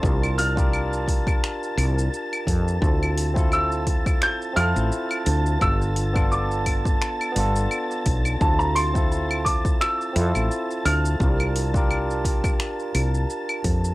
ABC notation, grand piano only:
X:1
M:4/4
L:1/16
Q:"Swing 16ths" 1/4=86
K:Dm
V:1 name="Grand piano"
c'2 f'12 z2 | z4 e'4 g'2 f'6 | e'4 d'8 z4 | a b c'4 d'2 e'6 f'2- |
f'12 z4 |]